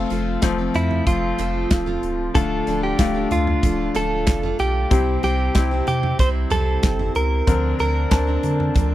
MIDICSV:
0, 0, Header, 1, 6, 480
1, 0, Start_track
1, 0, Key_signature, -1, "major"
1, 0, Tempo, 640615
1, 1761, Time_signature, 4, 2, 24, 8
1, 6704, End_track
2, 0, Start_track
2, 0, Title_t, "Clean electric guitar"
2, 0, Program_c, 0, 27
2, 566, Note_on_c, 0, 64, 66
2, 800, Note_off_c, 0, 64, 0
2, 803, Note_on_c, 0, 65, 81
2, 1732, Note_off_c, 0, 65, 0
2, 1761, Note_on_c, 0, 69, 96
2, 2120, Note_off_c, 0, 69, 0
2, 2123, Note_on_c, 0, 67, 77
2, 2457, Note_off_c, 0, 67, 0
2, 2487, Note_on_c, 0, 65, 79
2, 2966, Note_off_c, 0, 65, 0
2, 2969, Note_on_c, 0, 69, 84
2, 3442, Note_off_c, 0, 69, 0
2, 3445, Note_on_c, 0, 67, 86
2, 3917, Note_off_c, 0, 67, 0
2, 3926, Note_on_c, 0, 67, 90
2, 4395, Note_off_c, 0, 67, 0
2, 4404, Note_on_c, 0, 67, 82
2, 4642, Note_off_c, 0, 67, 0
2, 4645, Note_on_c, 0, 72, 90
2, 4710, Note_off_c, 0, 72, 0
2, 4882, Note_on_c, 0, 69, 86
2, 5331, Note_off_c, 0, 69, 0
2, 5365, Note_on_c, 0, 70, 88
2, 5813, Note_off_c, 0, 70, 0
2, 5846, Note_on_c, 0, 70, 98
2, 6704, Note_off_c, 0, 70, 0
2, 6704, End_track
3, 0, Start_track
3, 0, Title_t, "Steel-string acoustic guitar"
3, 0, Program_c, 1, 25
3, 0, Note_on_c, 1, 65, 74
3, 0, Note_on_c, 1, 69, 73
3, 74, Note_on_c, 1, 53, 63
3, 78, Note_off_c, 1, 65, 0
3, 81, Note_on_c, 1, 60, 68
3, 83, Note_off_c, 1, 69, 0
3, 87, Note_on_c, 1, 65, 73
3, 92, Note_on_c, 1, 69, 72
3, 428, Note_off_c, 1, 69, 0
3, 437, Note_on_c, 1, 69, 58
3, 438, Note_off_c, 1, 53, 0
3, 438, Note_off_c, 1, 65, 0
3, 441, Note_off_c, 1, 60, 0
3, 447, Note_on_c, 1, 65, 48
3, 456, Note_on_c, 1, 60, 48
3, 796, Note_off_c, 1, 60, 0
3, 798, Note_on_c, 1, 53, 60
3, 799, Note_off_c, 1, 69, 0
3, 802, Note_off_c, 1, 65, 0
3, 805, Note_on_c, 1, 60, 72
3, 811, Note_on_c, 1, 65, 61
3, 816, Note_on_c, 1, 69, 70
3, 1030, Note_off_c, 1, 53, 0
3, 1035, Note_off_c, 1, 60, 0
3, 1039, Note_off_c, 1, 65, 0
3, 1039, Note_on_c, 1, 53, 76
3, 1043, Note_off_c, 1, 69, 0
3, 1044, Note_on_c, 1, 60, 79
3, 1048, Note_on_c, 1, 65, 76
3, 1052, Note_on_c, 1, 69, 85
3, 1385, Note_off_c, 1, 69, 0
3, 1394, Note_on_c, 1, 69, 59
3, 1397, Note_off_c, 1, 65, 0
3, 1400, Note_off_c, 1, 53, 0
3, 1403, Note_off_c, 1, 60, 0
3, 1406, Note_on_c, 1, 65, 57
3, 1414, Note_on_c, 1, 60, 48
3, 1756, Note_on_c, 1, 53, 64
3, 1758, Note_off_c, 1, 69, 0
3, 1760, Note_off_c, 1, 60, 0
3, 1761, Note_off_c, 1, 65, 0
3, 1763, Note_on_c, 1, 62, 69
3, 1770, Note_on_c, 1, 65, 73
3, 1775, Note_on_c, 1, 69, 77
3, 1990, Note_off_c, 1, 53, 0
3, 1998, Note_off_c, 1, 62, 0
3, 1999, Note_on_c, 1, 53, 66
3, 2002, Note_off_c, 1, 65, 0
3, 2007, Note_on_c, 1, 62, 70
3, 2008, Note_off_c, 1, 69, 0
3, 2011, Note_on_c, 1, 65, 69
3, 2016, Note_on_c, 1, 69, 70
3, 2348, Note_off_c, 1, 69, 0
3, 2357, Note_off_c, 1, 65, 0
3, 2357, Note_on_c, 1, 69, 57
3, 2360, Note_off_c, 1, 53, 0
3, 2364, Note_off_c, 1, 62, 0
3, 2366, Note_on_c, 1, 65, 54
3, 2374, Note_on_c, 1, 62, 45
3, 2717, Note_off_c, 1, 62, 0
3, 2718, Note_on_c, 1, 53, 63
3, 2719, Note_off_c, 1, 69, 0
3, 2723, Note_off_c, 1, 65, 0
3, 2726, Note_on_c, 1, 62, 61
3, 2731, Note_on_c, 1, 65, 74
3, 2737, Note_on_c, 1, 69, 70
3, 2956, Note_off_c, 1, 53, 0
3, 2961, Note_off_c, 1, 62, 0
3, 2962, Note_on_c, 1, 50, 80
3, 2963, Note_off_c, 1, 65, 0
3, 2965, Note_off_c, 1, 69, 0
3, 2965, Note_on_c, 1, 53, 77
3, 2970, Note_on_c, 1, 62, 81
3, 2972, Note_on_c, 1, 65, 76
3, 2974, Note_on_c, 1, 69, 85
3, 3311, Note_off_c, 1, 69, 0
3, 3320, Note_on_c, 1, 69, 61
3, 3321, Note_off_c, 1, 50, 0
3, 3321, Note_off_c, 1, 65, 0
3, 3323, Note_off_c, 1, 53, 0
3, 3325, Note_off_c, 1, 62, 0
3, 3330, Note_on_c, 1, 65, 52
3, 3340, Note_on_c, 1, 62, 47
3, 3678, Note_on_c, 1, 55, 74
3, 3680, Note_off_c, 1, 69, 0
3, 3681, Note_off_c, 1, 62, 0
3, 3684, Note_on_c, 1, 60, 70
3, 3686, Note_off_c, 1, 65, 0
3, 3691, Note_on_c, 1, 64, 75
3, 3696, Note_on_c, 1, 72, 73
3, 3909, Note_off_c, 1, 55, 0
3, 3917, Note_off_c, 1, 60, 0
3, 3918, Note_on_c, 1, 55, 69
3, 3922, Note_off_c, 1, 64, 0
3, 3926, Note_on_c, 1, 60, 65
3, 3929, Note_off_c, 1, 72, 0
3, 3931, Note_on_c, 1, 64, 70
3, 3937, Note_on_c, 1, 72, 70
3, 4270, Note_off_c, 1, 72, 0
3, 4279, Note_off_c, 1, 55, 0
3, 4279, Note_on_c, 1, 72, 62
3, 4280, Note_off_c, 1, 64, 0
3, 4283, Note_off_c, 1, 60, 0
3, 4289, Note_on_c, 1, 64, 51
3, 4298, Note_on_c, 1, 60, 49
3, 4636, Note_off_c, 1, 60, 0
3, 4637, Note_on_c, 1, 55, 66
3, 4640, Note_off_c, 1, 72, 0
3, 4642, Note_off_c, 1, 64, 0
3, 4645, Note_on_c, 1, 60, 71
3, 4651, Note_on_c, 1, 64, 66
3, 4655, Note_on_c, 1, 72, 76
3, 4875, Note_off_c, 1, 55, 0
3, 4877, Note_off_c, 1, 60, 0
3, 4880, Note_on_c, 1, 48, 83
3, 4882, Note_off_c, 1, 64, 0
3, 4883, Note_off_c, 1, 72, 0
3, 4884, Note_on_c, 1, 55, 82
3, 4886, Note_on_c, 1, 60, 90
3, 4891, Note_on_c, 1, 64, 81
3, 4892, Note_on_c, 1, 72, 87
3, 5229, Note_off_c, 1, 72, 0
3, 5238, Note_off_c, 1, 64, 0
3, 5238, Note_on_c, 1, 72, 57
3, 5241, Note_off_c, 1, 48, 0
3, 5242, Note_off_c, 1, 55, 0
3, 5244, Note_off_c, 1, 60, 0
3, 5247, Note_on_c, 1, 64, 54
3, 5256, Note_on_c, 1, 60, 45
3, 5594, Note_off_c, 1, 60, 0
3, 5597, Note_on_c, 1, 53, 62
3, 5600, Note_off_c, 1, 72, 0
3, 5603, Note_on_c, 1, 60, 65
3, 5604, Note_off_c, 1, 64, 0
3, 5609, Note_on_c, 1, 62, 68
3, 5616, Note_on_c, 1, 70, 66
3, 5827, Note_off_c, 1, 53, 0
3, 5834, Note_off_c, 1, 60, 0
3, 5836, Note_on_c, 1, 53, 62
3, 5840, Note_off_c, 1, 62, 0
3, 5843, Note_on_c, 1, 60, 68
3, 5846, Note_off_c, 1, 70, 0
3, 5849, Note_on_c, 1, 62, 69
3, 5855, Note_on_c, 1, 70, 80
3, 6187, Note_off_c, 1, 70, 0
3, 6196, Note_on_c, 1, 70, 52
3, 6197, Note_off_c, 1, 62, 0
3, 6198, Note_off_c, 1, 53, 0
3, 6202, Note_off_c, 1, 60, 0
3, 6206, Note_on_c, 1, 62, 50
3, 6215, Note_on_c, 1, 60, 48
3, 6551, Note_off_c, 1, 60, 0
3, 6552, Note_on_c, 1, 53, 64
3, 6556, Note_off_c, 1, 62, 0
3, 6558, Note_off_c, 1, 70, 0
3, 6560, Note_on_c, 1, 60, 63
3, 6565, Note_on_c, 1, 62, 62
3, 6570, Note_on_c, 1, 70, 70
3, 6704, Note_off_c, 1, 53, 0
3, 6704, Note_off_c, 1, 60, 0
3, 6704, Note_off_c, 1, 62, 0
3, 6704, Note_off_c, 1, 70, 0
3, 6704, End_track
4, 0, Start_track
4, 0, Title_t, "Upright piano"
4, 0, Program_c, 2, 0
4, 0, Control_c, 2, 64, 127
4, 0, Note_on_c, 2, 57, 87
4, 0, Note_on_c, 2, 60, 73
4, 0, Note_on_c, 2, 65, 99
4, 279, Note_off_c, 2, 57, 0
4, 282, Note_off_c, 2, 60, 0
4, 283, Note_off_c, 2, 65, 0
4, 318, Note_on_c, 2, 57, 84
4, 322, Note_on_c, 2, 60, 79
4, 327, Note_on_c, 2, 53, 89
4, 1200, Note_off_c, 2, 57, 0
4, 1202, Note_off_c, 2, 60, 0
4, 1204, Note_off_c, 2, 53, 0
4, 1756, Note_on_c, 2, 57, 73
4, 1758, Note_on_c, 2, 62, 68
4, 1759, Note_on_c, 2, 50, 62
4, 1764, Note_on_c, 2, 65, 79
4, 1769, Control_c, 2, 64, 0
4, 1900, Control_c, 2, 64, 127
4, 2199, Note_off_c, 2, 57, 0
4, 2200, Note_off_c, 2, 62, 0
4, 2202, Note_off_c, 2, 65, 0
4, 2238, Note_on_c, 2, 57, 75
4, 2242, Note_on_c, 2, 62, 66
4, 2246, Note_on_c, 2, 65, 78
4, 2450, Note_off_c, 2, 50, 0
4, 3120, Note_off_c, 2, 57, 0
4, 3122, Note_off_c, 2, 62, 0
4, 3124, Note_off_c, 2, 65, 0
4, 3676, Note_on_c, 2, 60, 73
4, 3679, Note_on_c, 2, 64, 69
4, 3680, Note_on_c, 2, 48, 64
4, 3684, Note_on_c, 2, 67, 81
4, 3689, Control_c, 2, 64, 0
4, 3822, Control_c, 2, 64, 127
4, 4118, Note_off_c, 2, 60, 0
4, 4120, Note_off_c, 2, 64, 0
4, 4123, Note_off_c, 2, 67, 0
4, 4157, Note_on_c, 2, 60, 75
4, 4162, Note_on_c, 2, 64, 69
4, 4165, Note_on_c, 2, 67, 81
4, 4370, Note_off_c, 2, 48, 0
4, 5039, Note_off_c, 2, 60, 0
4, 5042, Note_off_c, 2, 64, 0
4, 5043, Note_off_c, 2, 67, 0
4, 5597, Note_on_c, 2, 60, 72
4, 5600, Note_on_c, 2, 50, 62
4, 5601, Note_on_c, 2, 62, 61
4, 5606, Note_on_c, 2, 70, 77
4, 5609, Control_c, 2, 64, 0
4, 5749, Control_c, 2, 64, 127
4, 6039, Note_off_c, 2, 60, 0
4, 6041, Note_off_c, 2, 62, 0
4, 6044, Note_off_c, 2, 70, 0
4, 6077, Note_on_c, 2, 60, 72
4, 6081, Note_on_c, 2, 62, 64
4, 6085, Note_on_c, 2, 81, 76
4, 6291, Note_off_c, 2, 50, 0
4, 6704, Note_off_c, 2, 60, 0
4, 6704, Note_off_c, 2, 62, 0
4, 6704, Note_off_c, 2, 81, 0
4, 6704, End_track
5, 0, Start_track
5, 0, Title_t, "Sub bass"
5, 0, Program_c, 3, 38
5, 81, Note_on_c, 3, 29, 97
5, 278, Note_off_c, 3, 29, 0
5, 319, Note_on_c, 3, 29, 95
5, 517, Note_off_c, 3, 29, 0
5, 561, Note_on_c, 3, 41, 95
5, 758, Note_off_c, 3, 41, 0
5, 798, Note_on_c, 3, 29, 98
5, 996, Note_off_c, 3, 29, 0
5, 1040, Note_on_c, 3, 29, 104
5, 1237, Note_off_c, 3, 29, 0
5, 1281, Note_on_c, 3, 26, 94
5, 1478, Note_off_c, 3, 26, 0
5, 1519, Note_on_c, 3, 25, 84
5, 1716, Note_off_c, 3, 25, 0
5, 1761, Note_on_c, 3, 26, 100
5, 1958, Note_off_c, 3, 26, 0
5, 2001, Note_on_c, 3, 26, 90
5, 2198, Note_off_c, 3, 26, 0
5, 2241, Note_on_c, 3, 26, 95
5, 2438, Note_off_c, 3, 26, 0
5, 2481, Note_on_c, 3, 38, 98
5, 2678, Note_off_c, 3, 38, 0
5, 2720, Note_on_c, 3, 26, 93
5, 2917, Note_off_c, 3, 26, 0
5, 2960, Note_on_c, 3, 26, 103
5, 3201, Note_on_c, 3, 29, 91
5, 3213, Note_off_c, 3, 26, 0
5, 3398, Note_off_c, 3, 29, 0
5, 3442, Note_on_c, 3, 35, 84
5, 3638, Note_off_c, 3, 35, 0
5, 3680, Note_on_c, 3, 36, 103
5, 3877, Note_off_c, 3, 36, 0
5, 3922, Note_on_c, 3, 36, 98
5, 4118, Note_off_c, 3, 36, 0
5, 4161, Note_on_c, 3, 36, 91
5, 4358, Note_off_c, 3, 36, 0
5, 4398, Note_on_c, 3, 48, 108
5, 4596, Note_off_c, 3, 48, 0
5, 4640, Note_on_c, 3, 36, 96
5, 4837, Note_off_c, 3, 36, 0
5, 4880, Note_on_c, 3, 36, 93
5, 5077, Note_off_c, 3, 36, 0
5, 5120, Note_on_c, 3, 31, 109
5, 5317, Note_off_c, 3, 31, 0
5, 5363, Note_on_c, 3, 37, 90
5, 5559, Note_off_c, 3, 37, 0
5, 5600, Note_on_c, 3, 38, 104
5, 5797, Note_off_c, 3, 38, 0
5, 5842, Note_on_c, 3, 38, 84
5, 6038, Note_off_c, 3, 38, 0
5, 6081, Note_on_c, 3, 38, 105
5, 6278, Note_off_c, 3, 38, 0
5, 6319, Note_on_c, 3, 50, 98
5, 6516, Note_off_c, 3, 50, 0
5, 6561, Note_on_c, 3, 38, 105
5, 6704, Note_off_c, 3, 38, 0
5, 6704, End_track
6, 0, Start_track
6, 0, Title_t, "Drums"
6, 78, Note_on_c, 9, 42, 73
6, 153, Note_off_c, 9, 42, 0
6, 314, Note_on_c, 9, 42, 92
6, 317, Note_on_c, 9, 38, 109
6, 319, Note_on_c, 9, 36, 105
6, 323, Note_on_c, 9, 39, 89
6, 389, Note_off_c, 9, 42, 0
6, 392, Note_off_c, 9, 38, 0
6, 394, Note_off_c, 9, 36, 0
6, 398, Note_off_c, 9, 39, 0
6, 558, Note_on_c, 9, 42, 59
6, 560, Note_on_c, 9, 43, 60
6, 632, Note_off_c, 9, 42, 0
6, 635, Note_off_c, 9, 43, 0
6, 680, Note_on_c, 9, 43, 67
6, 755, Note_off_c, 9, 43, 0
6, 799, Note_on_c, 9, 36, 96
6, 799, Note_on_c, 9, 42, 77
6, 874, Note_off_c, 9, 36, 0
6, 874, Note_off_c, 9, 42, 0
6, 1039, Note_on_c, 9, 42, 66
6, 1042, Note_on_c, 9, 39, 68
6, 1114, Note_off_c, 9, 42, 0
6, 1117, Note_off_c, 9, 39, 0
6, 1279, Note_on_c, 9, 42, 86
6, 1281, Note_on_c, 9, 36, 115
6, 1281, Note_on_c, 9, 38, 107
6, 1283, Note_on_c, 9, 39, 80
6, 1354, Note_off_c, 9, 42, 0
6, 1356, Note_off_c, 9, 36, 0
6, 1356, Note_off_c, 9, 38, 0
6, 1358, Note_off_c, 9, 39, 0
6, 1404, Note_on_c, 9, 43, 62
6, 1479, Note_off_c, 9, 43, 0
6, 1522, Note_on_c, 9, 42, 54
6, 1597, Note_off_c, 9, 42, 0
6, 1761, Note_on_c, 9, 36, 117
6, 1763, Note_on_c, 9, 42, 86
6, 1836, Note_off_c, 9, 36, 0
6, 1838, Note_off_c, 9, 42, 0
6, 2001, Note_on_c, 9, 42, 76
6, 2076, Note_off_c, 9, 42, 0
6, 2238, Note_on_c, 9, 42, 93
6, 2240, Note_on_c, 9, 36, 111
6, 2241, Note_on_c, 9, 38, 110
6, 2243, Note_on_c, 9, 39, 82
6, 2313, Note_off_c, 9, 42, 0
6, 2315, Note_off_c, 9, 36, 0
6, 2316, Note_off_c, 9, 38, 0
6, 2318, Note_off_c, 9, 39, 0
6, 2478, Note_on_c, 9, 42, 60
6, 2481, Note_on_c, 9, 43, 63
6, 2553, Note_off_c, 9, 42, 0
6, 2556, Note_off_c, 9, 43, 0
6, 2602, Note_on_c, 9, 43, 67
6, 2677, Note_off_c, 9, 43, 0
6, 2721, Note_on_c, 9, 36, 98
6, 2723, Note_on_c, 9, 42, 74
6, 2796, Note_off_c, 9, 36, 0
6, 2798, Note_off_c, 9, 42, 0
6, 2959, Note_on_c, 9, 42, 69
6, 2962, Note_on_c, 9, 39, 66
6, 3034, Note_off_c, 9, 42, 0
6, 3037, Note_off_c, 9, 39, 0
6, 3197, Note_on_c, 9, 42, 94
6, 3199, Note_on_c, 9, 38, 100
6, 3201, Note_on_c, 9, 36, 109
6, 3201, Note_on_c, 9, 39, 72
6, 3272, Note_off_c, 9, 42, 0
6, 3274, Note_off_c, 9, 38, 0
6, 3276, Note_off_c, 9, 36, 0
6, 3276, Note_off_c, 9, 39, 0
6, 3323, Note_on_c, 9, 43, 63
6, 3398, Note_off_c, 9, 43, 0
6, 3440, Note_on_c, 9, 42, 58
6, 3515, Note_off_c, 9, 42, 0
6, 3679, Note_on_c, 9, 42, 92
6, 3680, Note_on_c, 9, 36, 115
6, 3754, Note_off_c, 9, 42, 0
6, 3755, Note_off_c, 9, 36, 0
6, 3920, Note_on_c, 9, 42, 77
6, 3995, Note_off_c, 9, 42, 0
6, 4156, Note_on_c, 9, 42, 91
6, 4159, Note_on_c, 9, 38, 105
6, 4161, Note_on_c, 9, 36, 110
6, 4163, Note_on_c, 9, 39, 86
6, 4231, Note_off_c, 9, 42, 0
6, 4234, Note_off_c, 9, 38, 0
6, 4236, Note_off_c, 9, 36, 0
6, 4237, Note_off_c, 9, 39, 0
6, 4398, Note_on_c, 9, 42, 59
6, 4400, Note_on_c, 9, 43, 64
6, 4473, Note_off_c, 9, 42, 0
6, 4475, Note_off_c, 9, 43, 0
6, 4520, Note_on_c, 9, 43, 72
6, 4595, Note_off_c, 9, 43, 0
6, 4639, Note_on_c, 9, 42, 76
6, 4640, Note_on_c, 9, 36, 97
6, 4714, Note_off_c, 9, 42, 0
6, 4715, Note_off_c, 9, 36, 0
6, 4875, Note_on_c, 9, 42, 70
6, 4875, Note_on_c, 9, 43, 69
6, 4878, Note_on_c, 9, 39, 68
6, 4950, Note_off_c, 9, 42, 0
6, 4950, Note_off_c, 9, 43, 0
6, 4953, Note_off_c, 9, 39, 0
6, 5117, Note_on_c, 9, 42, 93
6, 5119, Note_on_c, 9, 38, 107
6, 5121, Note_on_c, 9, 36, 108
6, 5122, Note_on_c, 9, 39, 74
6, 5192, Note_off_c, 9, 42, 0
6, 5193, Note_off_c, 9, 38, 0
6, 5196, Note_off_c, 9, 36, 0
6, 5197, Note_off_c, 9, 39, 0
6, 5241, Note_on_c, 9, 43, 66
6, 5316, Note_off_c, 9, 43, 0
6, 5358, Note_on_c, 9, 42, 62
6, 5433, Note_off_c, 9, 42, 0
6, 5600, Note_on_c, 9, 36, 110
6, 5600, Note_on_c, 9, 42, 91
6, 5674, Note_off_c, 9, 42, 0
6, 5675, Note_off_c, 9, 36, 0
6, 5841, Note_on_c, 9, 42, 74
6, 5916, Note_off_c, 9, 42, 0
6, 6077, Note_on_c, 9, 42, 88
6, 6080, Note_on_c, 9, 38, 111
6, 6081, Note_on_c, 9, 36, 109
6, 6082, Note_on_c, 9, 39, 95
6, 6152, Note_off_c, 9, 42, 0
6, 6155, Note_off_c, 9, 36, 0
6, 6155, Note_off_c, 9, 38, 0
6, 6157, Note_off_c, 9, 39, 0
6, 6319, Note_on_c, 9, 42, 59
6, 6321, Note_on_c, 9, 43, 62
6, 6394, Note_off_c, 9, 42, 0
6, 6396, Note_off_c, 9, 43, 0
6, 6444, Note_on_c, 9, 43, 66
6, 6519, Note_off_c, 9, 43, 0
6, 6561, Note_on_c, 9, 36, 93
6, 6561, Note_on_c, 9, 42, 72
6, 6636, Note_off_c, 9, 36, 0
6, 6636, Note_off_c, 9, 42, 0
6, 6704, End_track
0, 0, End_of_file